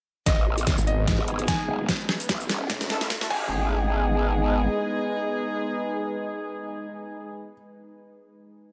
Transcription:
0.26 G#1 G#3 B3 D#4 B4 D#5, kick, snare, closed hi-hat, riser
0.38 A1
0.58 closed hi-hat, shaker
0.67 kick, snare, closed hi-hat
0.72 G#4
0.78 G#1, shaker
0.87 D#5, closed hi-hat
1.00 D#5
1.07 kick, snare, closed hi-hat
1.19 G#1
1.28 G#3 D#4 G#4, closed hi-hat
1.39 closed hi-hat
1.48 G#5, kick, snare, closed hi-hat
1.68 D#1
1.88 A3 C#4 E4, kick, snare, closed hi-hat
2.03 A4
2.09 snare
2.20 closed hi-hat, shaker
2.28 A1 E5, kick, snare, closed hi-hat
2.40 shaker
2.49 snare, closed hi-hat
2.70 E1, kick, snare, closed hi-hat
2.81 snare, shaker
2.90 C#2 A3 E4 A4, snare, closed hi-hat
3.01 snare, closed hi-hat
3.10 kick, snare, closed hi-hat
3.21 A3 E4 A4, snare
3.30 G#1 G#3 B3 D#4 G#4 B4 G#5, kick, crash
3.37 G#4
3.64 D#5

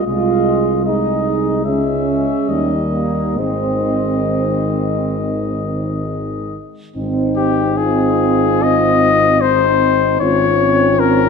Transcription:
0.05 C2 G#3 F4 D#5
0.85 G#3 D#4 D#5
1.65 C#2 G#3 C#4 E5
2.48 D#2 D#3 G3 D#5
2.92 A#3
3.37 G#1 D#3 G#3 C4 D#5
6.96 G#1 C4 D#4
7.37 G4
7.77 C4 D#4 F4 G#4
8.63 C4 D#4 D#5
9.41 C4 D#4 C5
10.20 G#1 C4 C#4 F4 C#5
11.00 A#4

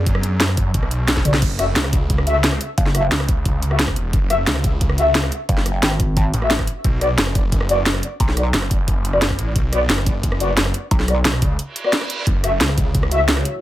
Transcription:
Already playing: F#2 B3 D4 G#4 D5
0.06 kick, closed hi-hat
0.15 cross-stick
0.23 closed hi-hat
0.40 snare, closed hi-hat
0.49 cross-stick
0.57 kick, closed hi-hat
0.74 B1, kick, closed hi-hat
0.83 cross-stick
0.91 closed hi-hat
1.08 snare, closed hi-hat
1.17 kick, snare
1.25 B3 F#4 D5, closed hi-hat, mid tom
1.34 snare
1.42 F#1, kick, closed hi-hat, crash
1.59 A3 F#4 E5, cross-stick, closed hi-hat
1.76 C#2, snare, closed hi-hat
1.84 cross-stick
1.93 kick, closed hi-hat
2.10 kick, closed hi-hat
2.18 cross-stick
2.27 A3 F#4 E5, closed hi-hat
2.44 snare, closed hi-hat
2.52 cross-stick
2.61 closed hi-hat
2.78 F#1, kick, closed hi-hat
2.86 snare
2.95 A3 F#4 E5, cross-stick, closed hi-hat
3.12 C#2, snare, closed hi-hat
3.20 cross-stick
3.29 kick, closed hi-hat
3.45 kick, closed hi-hat
3.62 closed hi-hat
3.71 A3 F#4 E5, cross-stick
3.79 snare, closed hi-hat
3.88 kick, cross-stick
3.96 E1, closed hi-hat
4.13 F#1, kick, closed hi-hat
4.30 A3 F#4 E5, cross-stick, closed hi-hat
4.47 C#2, snare, closed hi-hat
4.56 cross-stick
4.64 kick, closed hi-hat
4.81 kick, closed hi-hat
4.89 cross-stick
4.98 A3 F#4 E5, closed hi-hat
5.15 snare, closed hi-hat
5.23 cross-stick
5.32 closed hi-hat
5.49 F#1, kick, closed hi-hat
5.57 snare
5.66 cross-stick, closed hi-hat
5.83 G#1, snare, closed hi-hat
5.91 cross-stick
6.00 kick, closed hi-hat
6.17 kick, closed hi-hat
6.34 A1, closed hi-hat
6.42 A3 F#4 E5, cross-stick
6.50 snare, closed hi-hat
6.59 kick, cross-stick
6.67 closed hi-hat
6.84 B1, kick, closed hi-hat
7.01 B3 F#4 D5, cross-stick, closed hi-hat
7.18 F#1, snare, closed hi-hat
7.27 cross-stick
7.35 kick, closed hi-hat
7.52 kick, closed hi-hat
7.61 cross-stick
7.69 B3 F#4 D5, closed hi-hat
7.86 snare, closed hi-hat
7.95 cross-stick
8.03 closed hi-hat
8.20 B1, kick, closed hi-hat
8.28 snare
8.37 B3 F#4 D5, cross-stick, closed hi-hat
8.54 F#1, snare, closed hi-hat
8.62 cross-stick
8.71 kick, closed hi-hat
8.88 kick, closed hi-hat
9.05 closed hi-hat
9.13 B3 F#4 D5, cross-stick
9.22 snare, closed hi-hat
9.30 kick, cross-stick
9.39 A1, closed hi-hat
9.56 B1, kick, closed hi-hat
9.73 B3 F#4 D5, cross-stick, closed hi-hat
9.89 F#1, snare, closed hi-hat
9.98 cross-stick
10.06 kick, closed hi-hat
10.23 kick, closed hi-hat
10.32 cross-stick
10.40 B3 F#4 D5, closed hi-hat
10.57 snare, closed hi-hat
10.66 cross-stick
10.74 closed hi-hat
10.91 B1, kick, closed hi-hat
11.00 snare
11.08 B3 F#4 D5, cross-stick, closed hi-hat
11.25 B1, snare, closed hi-hat
11.34 cross-stick
11.42 C#2, kick, closed hi-hat
11.59 closed hi-hat, reverse cymbal
11.76 closed hi-hat
11.84 B3 F#4 D5, cross-stick
11.93 snare, closed hi-hat
12.01 cross-stick
12.10 closed hi-hat
12.27 F#1 A3 E4 F#4 C#5, kick, closed hi-hat
12.44 A3 F#4 E5, cross-stick, closed hi-hat
12.61 C#2, snare, closed hi-hat
12.69 cross-stick
12.78 kick, closed hi-hat
12.95 kick, closed hi-hat
13.03 cross-stick
13.11 A3 F#4 E5, closed hi-hat
13.28 snare, closed hi-hat
13.37 cross-stick
13.45 closed hi-hat

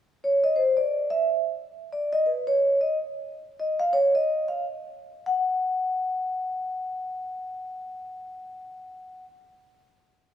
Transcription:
0.24 C#5
0.44 D#5
0.56 C5
0.77 D5
1.10 E5
1.93 D5
2.13 D#5
2.26 B4
2.47 C#5
2.81 D#5
3.60 D#5
3.80 F5
3.93 C#5
4.15 D#5
4.48 F5
5.26 F#5

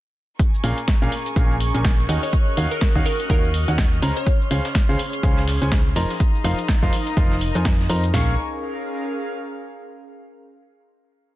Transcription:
0.39 C#4 A#4 G#5 C#6, kick, closed hi-hat, shaker
0.54 G#4, shaker
0.64 A#1 A#2 C#4 G#4 A#4 F5, open hi-hat
0.78 closed hi-hat, shaker
0.88 kick, snare, closed hi-hat, shaker
1.02 A#1 A#2 C#4 G#4 A#4 F5, shaker
1.12 A#4, open hi-hat
1.26 closed hi-hat, shaker
1.36 A#1 A#2 C#4 G#4 A#4 F5, kick, closed hi-hat, shaker
1.51 shaker
1.60 open hi-hat
1.75 A#1 A#2 C#4 G#4 A#4 G#5, closed hi-hat, shaker
1.85 kick, snare, closed hi-hat, shaker
2.00 shaker
2.09 D#2 D#3 D#4 F#4 C#5 D#5 G#5 F6 F#6, open hi-hat
2.23 C#5, open hi-hat, shaker
2.32 F#4, kick, closed hi-hat, shaker
2.48 shaker
2.57 D#2 D#3 D#4 F#4 C#5 F5, open hi-hat
2.71 A#4, closed hi-hat, shaker
2.81 kick, snare, closed hi-hat, shaker
2.91 D#5
2.95 D#2 D#3 D#4 F#4 C#5 F5, kick, shaker
3.06 A#4, open hi-hat
3.20 closed hi-hat, shaker
3.30 D#2 D#3 D#4 F#4 A#4 C#5 F5, kick, closed hi-hat, shaker
3.45 shaker
3.54 open hi-hat
3.68 D#2 D#3 D#4 F#4 C#5 F#5, closed hi-hat, shaker
3.78 kick, snare, open hi-hat, shaker
3.93 shaker
4.02 C#2 C#3 C#4 G#4 C5 C#5 A#5 C6, open hi-hat
4.17 C#5 C6, closed hi-hat, shaker
4.26 kick, closed hi-hat, shaker
4.42 shaker
4.48 C#2 C#3 C#4 G#4 C5 F5, closed hi-hat, open hi-hat
4.65 snare, closed hi-hat, shaker
4.75 kick, snare, closed hi-hat, shaker
4.89 C#2 C#3 C#4 G#4 C5 F5, closed hi-hat, shaker
4.99 closed hi-hat, open hi-hat
5.13 closed hi-hat, shaker
5.23 C#2 C#3 C#4 G#4 C5 F5, kick, closed hi-hat, shaker
5.37 snare, shaker
5.47 snare, closed hi-hat, open hi-hat
5.62 C#2 C#3 C#4 G#4 C5 G#5, closed hi-hat, shaker
5.72 kick, snare, closed hi-hat, shaker
5.87 shaker
5.96 F1 F3 D#4 A#4 C5 D#5 F5 A#5, closed hi-hat, open hi-hat
6.10 snare, open hi-hat, shaker
6.20 kick, closed hi-hat, shaker
6.35 shaker
6.43 F1 F3 D#4 A#4 C5 F5, closed hi-hat, open hi-hat
6.59 closed hi-hat, shaker
6.68 kick, snare, closed hi-hat, shaker
6.83 F1 F3 D#4 A#4 C5 F5, kick, shaker
6.93 closed hi-hat, open hi-hat
7.07 closed hi-hat, shaker
7.17 F1 F3 D#4 A#4 C5 F5, kick, closed hi-hat, shaker
7.31 snare, shaker
7.41 closed hi-hat, open hi-hat
7.55 F2 F3 D#4 A#4 C5 G#5, closed hi-hat, shaker
7.65 kick, snare, closed hi-hat, open hi-hat, shaker
7.80 snare, shaker
7.89 F2 D#4 A#4 C5 A#5, closed hi-hat, open hi-hat
8.04 closed hi-hat, shaker
8.14 A#1 C#4 G#4 A#4 F5 G#5 C#6, snare, floor tom, open hi-hat
8.22 G#4
8.30 A#4
8.36 F5

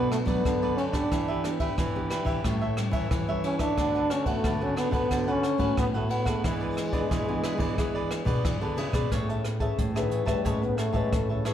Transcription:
Already playing: B2 F#3 A3 B3 D4 B4 D5
0.00 A4
0.11 A3, muted cavaquinho stroke, cross-stick, ride
0.26 F#3 A3 B3 D4 A4 B4 D5, kick, ride
0.45 F#2 D3, kick, cross-stick, ride
0.62 F#3 A3 D4 A4 B4 D5
0.77 C#4 D4 A4 B4 D5, ride
0.93 B3 D4 G4 A4 B4 D5, kick, cross-stick, ride
1.11 E3 D4 G4 B4 E5, kick, cross-stick, ride
1.28 G4 B4 E5
1.44 B3 D4 G4, muted cavaquinho stroke, cross-stick, ride
1.60 G4 B4 E5, kick, ride
1.77 B2 E3 D4 G4 B4 E5, kick, cross-stick, ride
1.95 B3 D4 G4
2.10 D4 G4 B4 E5, cross-stick, ride
2.25 E3 G4 B4 E5, kick, ride
2.44 A2 G3 C#4 E4 G4 A4 C#5 E5, kick, cross-stick, ride
2.62 A4 C#5 E5
2.77 G3 C#4 E4, muted cavaquinho stroke, cross-stick, ride
2.91 E3 A4 C#5 E5, kick, ride
3.11 E3, kick, cross-stick, ride
3.28 G3 C#4 E4 A4 C#5 E5
3.44 C#4 G4 A4 C#5 E5, ride
3.59 D4 A4 C#5 E5, kick, cross-stick, ride
3.78 D3 A3 B3 D4 F#4 A4 B4 F#5, kick, cross-stick, ride
3.95 A4 B4 F#5
4.10 C#4, muted cavaquinho stroke, cross-stick, ride
4.26 A3 B3 F#4 A4 B4 F#5, kick, ride
4.44 A2 D3 D4 A4 B4 F#5, kick, cross-stick, ride
4.61 A3 B3 C#4 F#4
4.76 B3 D4 A4 B4 F#5, cross-stick, ride
4.91 D3 B3 A4 B4 F#5, kick, ride
5.10 D3 A3 B3 D4 F#4 A4 B4 F#5, kick, cross-stick, ride
5.28 C#4 A4 B4 F#5
5.43 muted cavaquinho stroke, cross-stick, ride
5.58 A2 A3 B3 F#4 A4 B4 F#5, kick, ride
5.77 A2 B3, kick, cross-stick, ride
5.94 A3 B3 F#4 A4 B4 F#5
6.09 B3 D4 A4 B4 F#5, ride
6.25 A3 B3 D4 G#4 A4 B4 F#5, kick, cross-stick, ride
6.43 E3 G#3 E4 G#4 B4 D5, kick, cross-stick, ride
6.60 G#4 B4 D5
6.77 muted cavaquinho stroke, cross-stick, ride
6.93 B3 D4 G#4 B4 D5, kick, ride
7.11 B2 E3 E4 G#4 B4 D5, kick, cross-stick, ride
7.29 B3 D4 G#4
7.44 E4 G#4 B4 D5, cross-stick, ride
7.58 E3 G#4 B4 D5, kick, ride
7.78 E3 B3 D4 E4 G#4 B4 D5, kick, cross-stick, ride
7.95 G#4 B4 D5
8.11 muted cavaquinho stroke, cross-stick, ride
8.25 B2 B3 D4 G#4 B4 D5, kick, ride
8.45 B2 E3, kick, cross-stick, ride
8.61 D3 B3 D4 G#4 B4 D5
8.77 C#3 E4 G#4 B4 D5, ride
8.92 B2 C#4 G#4 B4 D5, kick, cross-stick, ride
9.12 A2 A3 G#4 C#5 E5 A5, kick, cross-stick, closed hi-hat
9.29 C#5 E5 A5, closed hi-hat
9.44 muted cavaquinho stroke, cross-stick, closed hi-hat
9.60 C#4 G#4 B4 C#5 E5 A5, kick, closed hi-hat
9.78 A2 E3, kick, closed hi-hat
9.95 D3 C#4 G#4 B4 C#5 E5 A5, cross-stick, closed hi-hat
10.10 E3 G#4 C#5 E5 A5, closed hi-hat
10.26 A2 G3 C#4 G#4 B4 C#5 E5 A5, kick, cross-stick
10.45 A2 G#3 A3 C#4 G#4 B4 C#5 E5 A5, kick, closed hi-hat
10.62 B3, muted cavaquinho stroke, closed hi-hat
10.77 A3 G#4 C#5 E5 A5, cross-stick, closed hi-hat
10.93 A2 G#3 C#4 B4 C#5 E5 A5, kick, closed hi-hat
11.12 A2 E3 A3, kick, cross-stick, closed hi-hat
11.29 C#3 C#5 E5 A5
11.45 E3 C#4 G#4 B4 C#5 E5 A5, cross-stick, closed hi-hat

